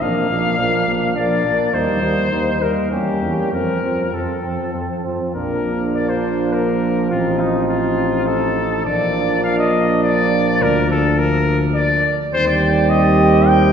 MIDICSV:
0, 0, Header, 1, 6, 480
1, 0, Start_track
1, 0, Key_signature, -2, "major"
1, 0, Tempo, 576923
1, 8, Time_signature, 3, 2, 24, 8
1, 1929, Tempo, 603622
1, 4809, Tempo, 585366
1, 8169, Tempo, 575264
1, 11246, End_track
2, 0, Start_track
2, 0, Title_t, "Trumpet"
2, 0, Program_c, 0, 56
2, 13, Note_on_c, 0, 77, 92
2, 960, Note_off_c, 0, 77, 0
2, 965, Note_on_c, 0, 74, 82
2, 1446, Note_on_c, 0, 72, 95
2, 1458, Note_off_c, 0, 74, 0
2, 2169, Note_on_c, 0, 70, 70
2, 2181, Note_off_c, 0, 72, 0
2, 2399, Note_off_c, 0, 70, 0
2, 2404, Note_on_c, 0, 67, 68
2, 2877, Note_off_c, 0, 67, 0
2, 2889, Note_on_c, 0, 70, 76
2, 3372, Note_on_c, 0, 69, 58
2, 3384, Note_off_c, 0, 70, 0
2, 4102, Note_off_c, 0, 69, 0
2, 4339, Note_on_c, 0, 70, 77
2, 4777, Note_off_c, 0, 70, 0
2, 4817, Note_on_c, 0, 74, 80
2, 4933, Note_on_c, 0, 72, 76
2, 4946, Note_off_c, 0, 74, 0
2, 5290, Note_on_c, 0, 70, 74
2, 5302, Note_off_c, 0, 72, 0
2, 5762, Note_off_c, 0, 70, 0
2, 5767, Note_on_c, 0, 65, 75
2, 6002, Note_on_c, 0, 63, 64
2, 6014, Note_off_c, 0, 65, 0
2, 6232, Note_off_c, 0, 63, 0
2, 6237, Note_on_c, 0, 65, 82
2, 6712, Note_off_c, 0, 65, 0
2, 6719, Note_on_c, 0, 69, 85
2, 7192, Note_off_c, 0, 69, 0
2, 7196, Note_on_c, 0, 74, 94
2, 7670, Note_off_c, 0, 74, 0
2, 7675, Note_on_c, 0, 77, 95
2, 7793, Note_off_c, 0, 77, 0
2, 7798, Note_on_c, 0, 75, 89
2, 8156, Note_off_c, 0, 75, 0
2, 8165, Note_on_c, 0, 74, 98
2, 8654, Note_on_c, 0, 70, 100
2, 8667, Note_off_c, 0, 74, 0
2, 8889, Note_off_c, 0, 70, 0
2, 8895, Note_on_c, 0, 69, 89
2, 9125, Note_on_c, 0, 70, 96
2, 9138, Note_off_c, 0, 69, 0
2, 9457, Note_off_c, 0, 70, 0
2, 9597, Note_on_c, 0, 74, 100
2, 9911, Note_off_c, 0, 74, 0
2, 10082, Note_on_c, 0, 72, 109
2, 10198, Note_off_c, 0, 72, 0
2, 10202, Note_on_c, 0, 74, 93
2, 10556, Note_on_c, 0, 75, 100
2, 10568, Note_off_c, 0, 74, 0
2, 11038, Note_on_c, 0, 79, 101
2, 11051, Note_off_c, 0, 75, 0
2, 11246, Note_off_c, 0, 79, 0
2, 11246, End_track
3, 0, Start_track
3, 0, Title_t, "Trumpet"
3, 0, Program_c, 1, 56
3, 11, Note_on_c, 1, 62, 54
3, 245, Note_off_c, 1, 62, 0
3, 249, Note_on_c, 1, 62, 49
3, 474, Note_off_c, 1, 62, 0
3, 479, Note_on_c, 1, 62, 55
3, 716, Note_off_c, 1, 62, 0
3, 722, Note_on_c, 1, 62, 46
3, 949, Note_off_c, 1, 62, 0
3, 954, Note_on_c, 1, 62, 53
3, 1184, Note_off_c, 1, 62, 0
3, 1189, Note_on_c, 1, 62, 54
3, 1425, Note_off_c, 1, 62, 0
3, 1430, Note_on_c, 1, 63, 53
3, 1673, Note_off_c, 1, 63, 0
3, 1677, Note_on_c, 1, 63, 47
3, 1917, Note_off_c, 1, 63, 0
3, 1922, Note_on_c, 1, 63, 53
3, 2156, Note_off_c, 1, 63, 0
3, 2161, Note_on_c, 1, 63, 40
3, 2392, Note_off_c, 1, 63, 0
3, 2397, Note_on_c, 1, 61, 47
3, 2637, Note_off_c, 1, 61, 0
3, 2641, Note_on_c, 1, 61, 44
3, 2877, Note_off_c, 1, 61, 0
3, 2882, Note_on_c, 1, 60, 47
3, 3117, Note_off_c, 1, 60, 0
3, 3122, Note_on_c, 1, 60, 38
3, 3364, Note_off_c, 1, 60, 0
3, 3373, Note_on_c, 1, 60, 42
3, 3606, Note_off_c, 1, 60, 0
3, 3611, Note_on_c, 1, 60, 38
3, 3852, Note_off_c, 1, 60, 0
3, 3856, Note_on_c, 1, 60, 40
3, 4096, Note_off_c, 1, 60, 0
3, 4101, Note_on_c, 1, 60, 43
3, 4336, Note_off_c, 1, 60, 0
3, 4342, Note_on_c, 1, 62, 51
3, 5633, Note_off_c, 1, 62, 0
3, 5773, Note_on_c, 1, 63, 55
3, 7198, Note_on_c, 1, 62, 58
3, 7210, Note_off_c, 1, 63, 0
3, 9857, Note_off_c, 1, 62, 0
3, 10077, Note_on_c, 1, 67, 78
3, 11246, Note_off_c, 1, 67, 0
3, 11246, End_track
4, 0, Start_track
4, 0, Title_t, "French horn"
4, 0, Program_c, 2, 60
4, 11, Note_on_c, 2, 58, 59
4, 245, Note_off_c, 2, 58, 0
4, 251, Note_on_c, 2, 58, 50
4, 483, Note_off_c, 2, 58, 0
4, 488, Note_on_c, 2, 58, 49
4, 721, Note_off_c, 2, 58, 0
4, 732, Note_on_c, 2, 58, 52
4, 963, Note_off_c, 2, 58, 0
4, 972, Note_on_c, 2, 58, 51
4, 1202, Note_off_c, 2, 58, 0
4, 1212, Note_on_c, 2, 58, 50
4, 1442, Note_off_c, 2, 58, 0
4, 1451, Note_on_c, 2, 58, 59
4, 1681, Note_off_c, 2, 58, 0
4, 1686, Note_on_c, 2, 58, 45
4, 1926, Note_off_c, 2, 58, 0
4, 1931, Note_on_c, 2, 58, 47
4, 2159, Note_off_c, 2, 58, 0
4, 2164, Note_on_c, 2, 58, 46
4, 2393, Note_off_c, 2, 58, 0
4, 2398, Note_on_c, 2, 58, 46
4, 2637, Note_off_c, 2, 58, 0
4, 2647, Note_on_c, 2, 58, 45
4, 2879, Note_off_c, 2, 58, 0
4, 2884, Note_on_c, 2, 60, 43
4, 3124, Note_off_c, 2, 60, 0
4, 3130, Note_on_c, 2, 60, 41
4, 3368, Note_off_c, 2, 60, 0
4, 3371, Note_on_c, 2, 60, 39
4, 3608, Note_off_c, 2, 60, 0
4, 3613, Note_on_c, 2, 60, 39
4, 3849, Note_off_c, 2, 60, 0
4, 3854, Note_on_c, 2, 60, 38
4, 4095, Note_off_c, 2, 60, 0
4, 4099, Note_on_c, 2, 60, 42
4, 4335, Note_off_c, 2, 60, 0
4, 4342, Note_on_c, 2, 58, 64
4, 5762, Note_on_c, 2, 60, 64
4, 5775, Note_off_c, 2, 58, 0
4, 7062, Note_off_c, 2, 60, 0
4, 7202, Note_on_c, 2, 58, 70
4, 9826, Note_off_c, 2, 58, 0
4, 10091, Note_on_c, 2, 60, 81
4, 11246, Note_off_c, 2, 60, 0
4, 11246, End_track
5, 0, Start_track
5, 0, Title_t, "Trombone"
5, 0, Program_c, 3, 57
5, 9, Note_on_c, 3, 53, 53
5, 244, Note_off_c, 3, 53, 0
5, 248, Note_on_c, 3, 53, 49
5, 481, Note_off_c, 3, 53, 0
5, 494, Note_on_c, 3, 53, 54
5, 724, Note_off_c, 3, 53, 0
5, 730, Note_on_c, 3, 53, 41
5, 962, Note_off_c, 3, 53, 0
5, 970, Note_on_c, 3, 53, 51
5, 1201, Note_off_c, 3, 53, 0
5, 1212, Note_on_c, 3, 53, 46
5, 1442, Note_off_c, 3, 53, 0
5, 1446, Note_on_c, 3, 55, 51
5, 1681, Note_off_c, 3, 55, 0
5, 1690, Note_on_c, 3, 55, 46
5, 1922, Note_off_c, 3, 55, 0
5, 1927, Note_on_c, 3, 55, 46
5, 2162, Note_off_c, 3, 55, 0
5, 2166, Note_on_c, 3, 55, 35
5, 2401, Note_off_c, 3, 55, 0
5, 2405, Note_on_c, 3, 55, 44
5, 2641, Note_off_c, 3, 55, 0
5, 2650, Note_on_c, 3, 55, 43
5, 2885, Note_off_c, 3, 55, 0
5, 2892, Note_on_c, 3, 53, 41
5, 3125, Note_off_c, 3, 53, 0
5, 3130, Note_on_c, 3, 53, 44
5, 3368, Note_off_c, 3, 53, 0
5, 3376, Note_on_c, 3, 53, 38
5, 3613, Note_off_c, 3, 53, 0
5, 3624, Note_on_c, 3, 53, 38
5, 3857, Note_off_c, 3, 53, 0
5, 3862, Note_on_c, 3, 53, 38
5, 4099, Note_off_c, 3, 53, 0
5, 4104, Note_on_c, 3, 53, 36
5, 4337, Note_off_c, 3, 53, 0
5, 4346, Note_on_c, 3, 53, 55
5, 7065, Note_off_c, 3, 53, 0
5, 7205, Note_on_c, 3, 53, 64
5, 9827, Note_off_c, 3, 53, 0
5, 10092, Note_on_c, 3, 55, 74
5, 11246, Note_off_c, 3, 55, 0
5, 11246, End_track
6, 0, Start_track
6, 0, Title_t, "Bass trombone"
6, 0, Program_c, 4, 57
6, 10, Note_on_c, 4, 34, 59
6, 117, Note_off_c, 4, 34, 0
6, 250, Note_on_c, 4, 34, 56
6, 356, Note_off_c, 4, 34, 0
6, 484, Note_on_c, 4, 34, 57
6, 592, Note_off_c, 4, 34, 0
6, 727, Note_on_c, 4, 34, 52
6, 834, Note_off_c, 4, 34, 0
6, 967, Note_on_c, 4, 34, 54
6, 1074, Note_off_c, 4, 34, 0
6, 1200, Note_on_c, 4, 34, 47
6, 1308, Note_off_c, 4, 34, 0
6, 1440, Note_on_c, 4, 39, 53
6, 1549, Note_off_c, 4, 39, 0
6, 1681, Note_on_c, 4, 39, 53
6, 1793, Note_off_c, 4, 39, 0
6, 1928, Note_on_c, 4, 39, 46
6, 2036, Note_off_c, 4, 39, 0
6, 2164, Note_on_c, 4, 39, 44
6, 2272, Note_off_c, 4, 39, 0
6, 2399, Note_on_c, 4, 40, 46
6, 2509, Note_off_c, 4, 40, 0
6, 2646, Note_on_c, 4, 40, 45
6, 2755, Note_off_c, 4, 40, 0
6, 2888, Note_on_c, 4, 41, 48
6, 2998, Note_off_c, 4, 41, 0
6, 3129, Note_on_c, 4, 41, 41
6, 3239, Note_off_c, 4, 41, 0
6, 3374, Note_on_c, 4, 41, 46
6, 3483, Note_off_c, 4, 41, 0
6, 3618, Note_on_c, 4, 41, 37
6, 3727, Note_off_c, 4, 41, 0
6, 3862, Note_on_c, 4, 41, 41
6, 3971, Note_off_c, 4, 41, 0
6, 4108, Note_on_c, 4, 41, 40
6, 4214, Note_off_c, 4, 41, 0
6, 4343, Note_on_c, 4, 34, 59
6, 5767, Note_on_c, 4, 33, 59
6, 5779, Note_off_c, 4, 34, 0
6, 7199, Note_off_c, 4, 33, 0
6, 7203, Note_on_c, 4, 34, 62
6, 8648, Note_on_c, 4, 38, 77
6, 8661, Note_off_c, 4, 34, 0
6, 9861, Note_off_c, 4, 38, 0
6, 10090, Note_on_c, 4, 39, 80
6, 11246, Note_off_c, 4, 39, 0
6, 11246, End_track
0, 0, End_of_file